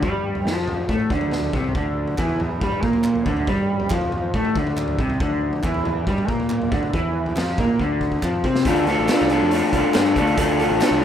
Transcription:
0.03 fingered electric bass G2, clean electric guitar G3, kick, floor tom
0.35 floor tom
0.45 fingered electric bass F2, clean electric guitar F3, snare
0.68 floor tom, mid tom
0.88 fingered electric bass A2, clean electric guitar A3, kick, floor tom
1.00 mid tom
1.10 fingered electric bass D2, clean electric guitar D3, kick, floor tom
1.21 floor tom
1.31 snare, mid tom
1.42 floor tom
1.53 fingered electric bass C2, clean electric guitar C3, kick, mid tom
1.64 floor tom
1.75 fingered electric bass D2, clean electric guitar D3, kick, floor tom
2.08 floor tom
2.18 fingered electric bass E2, clean electric guitar E3, kick, clap
2.29 floor tom
2.40 floor tom, mid tom
2.61 fingered electric bass G2, clean electric guitar G3, kick, floor tom
2.72 mid tom
2.83 fingered electric bass A#2, clean electric guitar A#3, kick
2.93 floor tom
3.04 clap, mid tom
3.15 floor tom
3.26 fingered electric bass D2, clean electric guitar D3, kick, mid tom
3.37 floor tom
3.47 fingered electric bass G2, clean electric guitar G3, kick, floor tom
3.80 floor tom
3.90 fingered electric bass F2, clean electric guitar F3, kick, clap
4.01 floor tom
4.12 floor tom, mid tom
4.34 fingered electric bass A2, clean electric guitar A3, kick, floor tom
4.45 mid tom
4.56 fingered electric bass D2, clean electric guitar D3, kick
4.67 floor tom
4.77 clap, mid tom
4.88 floor tom
4.99 fingered electric bass C2, clean electric guitar C3, kick, mid tom
5.10 floor tom
5.20 fingered electric bass D2, clean electric guitar D3, kick, floor tom
5.53 floor tom
5.63 fingered electric bass E2, clean electric guitar E3, kick, clap
5.74 floor tom
5.85 floor tom, mid tom
6.07 fingered electric bass G2, clean electric guitar G3, kick, floor tom
6.18 mid tom
6.28 fingered electric bass A#2, clean electric guitar A#3, kick
6.40 floor tom
6.50 clap, mid tom
6.62 floor tom
6.72 fingered electric bass D2, clean electric guitar D3, kick, mid tom
6.83 floor tom
6.93 fingered electric bass E2, clean electric guitar E3, kick, floor tom
7.26 floor tom
7.36 fingered electric bass F2, clean electric guitar F3, snare, clap
7.58 fingered electric bass A#2, clean electric guitar A#3, kick, floor tom, mid tom
7.79 fingered electric bass D2, clean electric guitar D3, kick
8.01 kick
8.12 kick
8.22 fingered electric bass F2, clean electric guitar F3, kick, clap
8.44 fingered electric bass C3, clean electric guitar C4, kick
8.56 snare
8.65 fingered electric bass D2, clean electric guitar D3 A3 D4 F4 A4, kick, closed hi-hat
8.76 closed hi-hat
8.87 clean electric guitar D3 A3 D4 F4 A4, snare, closed hi-hat
8.99 fingered electric bass A1
9.08 clean electric guitar D3 A3 D4 F4 A4, snare, clap, closed hi-hat
9.19 fingered electric bass C2, closed hi-hat
9.29 clean electric guitar D3 A3 D4 F4 A4, closed hi-hat
9.43 fingered electric bass F2
9.51 clean electric guitar D3 A3 D4 F4 A4, closed hi-hat
9.72 fingered electric bass C2, clean electric guitar D3 A3 D4 F4 A4, kick, closed hi-hat
9.94 fingered electric bass G2, clean electric guitar D3 A3 D4 F4 A4, snare, clap, closed hi-hat
10.06 closed hi-hat
10.16 fingered electric bass D2, clean electric guitar D3 A3 D4 F4 A4, kick, closed hi-hat
10.27 closed hi-hat
10.37 fingered electric bass D2, clean electric guitar D3 A3 D4 F4 A4, kick, closed hi-hat
10.48 closed hi-hat
10.59 clean electric guitar D3 A3 D4 F4 A4, closed hi-hat
10.70 fingered electric bass A1
10.81 clean electric guitar D3 A3 D4 F4 A4, snare, clap, closed hi-hat
10.91 fingered electric bass C2

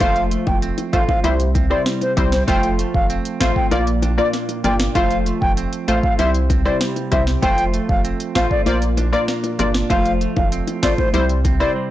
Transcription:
0.00 sub bass F1, clean electric guitar F3 F4, synth pluck A3 F4 C5, flute F5, kick, closed hi-hat, high bongo
0.16 closed hi-hat
0.31 clean electric guitar A3, closed hi-hat
0.47 sub bass F1, flute G5, kick, high bongo
0.62 clean electric guitar C4, closed hi-hat
0.78 closed hi-hat, high bongo
0.93 sub bass A1, synth pluck A3 F4 C5, clean electric guitar F4, flute F5, kick, closed hi-hat
1.09 flute F5, kick, high bongo
1.24 sub bass C2, clean electric guitar C3, synth pluck G3 E4 C5, flute E5, closed hi-hat, high bongo
1.40 closed hi-hat
1.55 clean electric guitar C4, kick, closed hi-hat, high bongo
1.70 synth pluck G3 E4 C5, flute D5, cross-stick
1.86 clean electric guitar G3, snare, closed hi-hat
2.01 flute C5, closed hi-hat, high bongo
2.17 sub bass C2, synth pluck G3 E4 C5, clean electric guitar C4, kick, closed hi-hat, low bongo
2.32 flute C5, snare
2.48 sub bass F1, clean electric guitar F3 F4, synth pluck A3 F4 C5, flute G5, kick, closed hi-hat, high bongo
2.63 closed hi-hat
2.79 clean electric guitar A3, closed hi-hat
2.94 sub bass F1, flute F5, kick
3.10 clean electric guitar C4, closed hi-hat
3.25 closed hi-hat
3.40 sub bass A1, synth pluck A3 F4 C5, clean electric guitar F4, flute F5, kick, snare, closed hi-hat
3.56 flute G5, kick
3.71 sub bass A#1, clean electric guitar A#2, synth pluck A#3 F4 D5, flute F5, closed hi-hat, high bongo
3.87 closed hi-hat
4.02 clean electric guitar D4, closed hi-hat, high bongo
4.18 synth pluck A#3 F4 D5, flute D5, cross-stick
4.33 clean electric guitar A#3, snare, closed hi-hat
4.49 closed hi-hat, high bongo
4.64 sub bass G1, synth pluck A#3 F4 D5, clean electric guitar D4, flute G5, closed hi-hat, low bongo
4.80 snare
4.95 sub bass F1, clean electric guitar F3 F4, synth pluck A3 F4 C5, flute F5, kick, closed hi-hat, high bongo
5.11 closed hi-hat
5.26 clean electric guitar A3, closed hi-hat
5.41 sub bass F1, flute G5, kick
5.57 clean electric guitar C4, closed hi-hat
5.73 closed hi-hat
5.88 sub bass A1, synth pluck A3 F4 C5, clean electric guitar F4, flute F5, closed hi-hat
6.03 flute F5, kick
6.19 sub bass C2, clean electric guitar C3, synth pluck G3 E4 C5, flute E5, closed hi-hat, high bongo
6.34 closed hi-hat
6.50 clean electric guitar C4, kick, closed hi-hat, high bongo
6.65 synth pluck G3 E4 C5, flute D5, cross-stick
6.81 clean electric guitar G3, snare, closed hi-hat
6.96 closed hi-hat, high bongo
7.12 sub bass C2, synth pluck G3 E4 C5, clean electric guitar C4, flute E5, kick, closed hi-hat, low bongo
7.27 snare
7.42 sub bass F1, clean electric guitar F3 F4, synth pluck A3 F4 C5, flute G5, kick, closed hi-hat, high bongo
7.58 closed hi-hat
7.74 clean electric guitar A3, closed hi-hat
7.89 sub bass F1, flute F5, kick
8.05 clean electric guitar C4, closed hi-hat
8.20 closed hi-hat
8.35 sub bass A1, synth pluck A3 F4 C5, clean electric guitar F4, flute F5, kick, snare, closed hi-hat
8.51 flute D5, kick
8.66 sub bass A#1, clean electric guitar A#2, synth pluck A#3 F4 D5, flute C5, closed hi-hat, high bongo
8.82 closed hi-hat
8.97 clean electric guitar D4, closed hi-hat, high bongo
9.13 synth pluck A#3 F4 D5, flute D5, cross-stick
9.28 clean electric guitar A#3, snare, closed hi-hat
9.44 closed hi-hat, high bongo
9.59 sub bass G1, synth pluck A#3 F4 D5, clean electric guitar D4, flute D5, closed hi-hat, low bongo
9.74 snare
9.90 sub bass F1, clean electric guitar F3 F4, synth pluck A3 F4 C5, flute F5, kick, closed hi-hat, high bongo
10.05 closed hi-hat
10.21 clean electric guitar A3, closed hi-hat
10.36 sub bass F1, flute F5, kick, high bongo
10.52 clean electric guitar C4, closed hi-hat
10.67 closed hi-hat, high bongo
10.83 sub bass A1, synth pluck A3 F4 C5, clean electric guitar F4, flute D5, kick, snare, closed hi-hat
10.98 flute C5, kick, high bongo
11.14 sub bass C2, clean electric guitar C3, synth pluck G3 E4 C5, flute C5, closed hi-hat, high bongo
11.29 closed hi-hat
11.45 clean electric guitar C4, kick, closed hi-hat, high bongo
11.60 synth pluck G3 E4 C5, flute D5, cross-stick
11.76 clean electric guitar G3

